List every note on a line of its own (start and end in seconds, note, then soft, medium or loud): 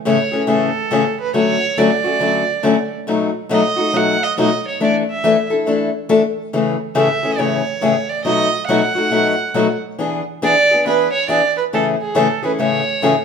0.05 0.17 A2 medium
0.05 0.17 C#3 medium
0.05 0.17 E3 medium
0.05 0.17 A3 medium
0.05 0.17 C#4 medium
0.05 0.17 G#4 medium
0.05 0.47 C#5 medium
0.32 0.46 E3 soft
0.32 0.46 A3 soft
0.32 0.47 C#4 soft
0.32 0.47 G#4 medium
0.47 0.69 A2 medium
0.47 0.69 C#3 medium
0.47 0.69 E3 medium
0.47 0.69 A3 medium
0.47 0.70 C#4 medium
0.47 0.70 G#4 medium
0.47 1.16 A4 medium
0.91 1.02 A2 medium
0.91 1.03 C#3 medium
0.91 1.03 E3 medium
0.91 1.03 A3 medium
0.91 1.03 C#4 medium
0.91 1.03 G#4 medium
1.21 1.35 B4 medium
1.34 1.56 D3 medium
1.34 1.56 F#3 medium
1.34 1.56 A3 medium
1.34 1.56 C#4 medium
1.34 1.56 F#4 medium
1.34 1.80 C#5 loud
1.77 1.89 D3 medium
1.77 1.89 F#3 medium
1.77 1.89 A3 medium
1.77 1.90 C#4 medium
1.77 1.90 F#4 medium
1.77 2.92 D5 medium
2.04 2.20 A3 soft
2.04 2.20 C#4 medium
2.04 2.20 F#4 medium
2.20 2.42 D3 medium
2.20 2.43 F#3 medium
2.20 2.43 A3 medium
2.20 2.43 C#4 medium
2.20 2.43 F#4 medium
2.63 2.75 D3 medium
2.63 2.75 F#3 medium
2.63 2.75 A3 medium
2.63 2.76 C#4 medium
2.63 2.76 F#4 medium
3.07 3.29 B2 medium
3.07 3.29 F#3 medium
3.07 3.29 A3 medium
3.07 3.30 D#4 medium
3.07 3.30 F#4 medium
3.49 3.61 B2 medium
3.49 3.62 F#3 medium
3.49 3.62 A3 medium
3.49 3.62 D#4 medium
3.49 3.62 F#4 medium
3.49 3.98 D#5 medium
3.76 3.93 A3 soft
3.76 3.93 D#4 medium
3.76 3.92 F#4 medium
3.93 4.15 B2 medium
3.93 4.15 F#3 medium
3.93 4.16 A3 medium
3.93 4.16 D#4 medium
3.93 4.16 F#4 medium
3.93 4.25 F#5 loud
4.23 4.38 D#5 medium
4.38 4.49 B2 medium
4.38 4.49 F#3 medium
4.38 4.49 A3 medium
4.38 4.49 D#4 medium
4.38 4.50 F#4 medium
4.38 4.64 D#5 medium
4.68 4.81 C#5 medium
4.80 5.02 E3 medium
4.80 5.02 A3 medium
4.80 5.02 D4 medium
4.80 5.02 E4 medium
4.80 5.03 A4 medium
4.80 4.95 D5 medium
5.11 5.50 E5 medium
5.24 5.35 E3 medium
5.24 5.35 A3 medium
5.24 5.36 D4 medium
5.24 5.36 E4 medium
5.24 5.36 A4 medium
5.50 5.66 D4 soft
5.50 5.66 E4 soft
5.50 5.66 A4 medium
5.66 5.88 E3 medium
5.66 5.88 A3 medium
5.66 5.89 D4 medium
5.66 5.89 E4 medium
5.66 5.89 A4 medium
6.09 6.21 E3 medium
6.09 6.21 A3 medium
6.09 6.21 D4 medium
6.09 6.21 E4 medium
6.09 6.21 A4 medium
6.53 6.75 A2 medium
6.53 6.75 C#3 medium
6.53 6.75 E3 medium
6.53 6.75 A3 medium
6.53 6.75 C#4 medium
6.53 6.76 G#4 medium
6.95 7.07 A2 medium
6.95 7.07 C#3 medium
6.95 7.07 E3 medium
6.95 7.07 A3 medium
6.95 7.08 C#4 medium
6.95 7.07 G#4 medium
6.95 7.41 E5 medium
7.23 7.37 E3 soft
7.23 7.38 A3 soft
7.23 7.38 C#4 soft
7.23 7.38 G#4 medium
7.38 7.61 A2 medium
7.38 7.60 C#3 medium
7.38 7.61 E3 medium
7.38 7.61 A3 medium
7.38 7.61 C#4 medium
7.38 7.61 G#4 medium
7.38 8.11 C#5 medium
7.81 7.94 A2 medium
7.81 7.94 C#3 medium
7.81 7.94 E3 medium
7.81 7.94 A3 medium
7.81 7.94 C#4 medium
7.81 7.95 G#4 medium
8.09 8.24 D5 medium
8.25 8.47 B2 medium
8.25 8.47 F#3 medium
8.25 8.47 A3 medium
8.25 8.47 D#4 medium
8.25 8.48 F#4 medium
8.25 8.65 D#5 medium
8.67 8.80 B2 medium
8.67 8.80 F#3 medium
8.67 8.81 A3 medium
8.67 8.81 D#4 medium
8.67 8.81 F#4 medium
8.67 9.78 F#5 medium
8.95 9.10 A3 soft
8.95 9.11 D#4 medium
8.95 9.11 F#4 medium
9.10 9.33 B2 medium
9.10 9.34 F#3 medium
9.10 9.34 A3 medium
9.10 9.34 D#4 medium
9.10 9.34 F#4 medium
9.54 9.66 B2 medium
9.54 9.66 F#3 medium
9.54 9.67 A3 medium
9.54 9.67 D#4 medium
9.54 9.67 F#4 medium
9.98 10.20 E3 medium
9.98 10.21 B3 medium
9.98 10.21 D4 medium
9.98 10.21 G#4 medium
10.42 10.54 E3 medium
10.42 10.54 B3 medium
10.42 10.54 D4 medium
10.42 10.54 G#4 medium
10.42 10.83 D5 loud
10.71 10.85 B3 soft
10.71 10.86 D4 medium
10.71 10.85 G#4 medium
10.86 11.07 E3 medium
10.86 11.07 B3 medium
10.86 11.08 D4 medium
10.86 11.08 G#4 medium
10.86 11.12 B4 medium
11.13 11.27 C#5 medium
11.28 11.40 E3 medium
11.28 11.40 B3 medium
11.28 11.40 D4 medium
11.28 11.41 G#4 medium
11.28 11.55 D5 medium
11.58 11.64 B4 medium
11.73 11.94 A2 medium
11.73 11.94 C#3 medium
11.73 11.94 E3 medium
11.73 11.94 A3 medium
11.73 11.94 C#4 medium
11.73 11.95 G#4 medium
11.73 11.86 A4 medium
12.01 12.18 G#4 medium
12.15 12.26 A2 medium
12.15 12.26 C#3 medium
12.15 12.27 E3 medium
12.15 12.27 A3 medium
12.15 12.27 C#4 medium
12.15 12.27 G#4 medium
12.15 12.43 A4 medium
12.43 12.59 E3 soft
12.43 12.58 A3 soft
12.43 12.58 C#4 medium
12.43 12.57 G#4 soft
12.43 12.52 B4 medium
12.59 12.80 A2 medium
12.59 12.81 C#3 medium
12.59 12.81 E3 medium
12.59 12.81 A3 medium
12.59 12.81 C#4 medium
12.59 12.81 G#4 medium
12.59 13.25 C#5 medium
13.02 13.13 A2 medium
13.02 13.13 C#3 medium
13.02 13.14 E3 medium
13.02 13.14 A3 medium
13.02 13.14 C#4 medium
13.02 13.14 G#4 medium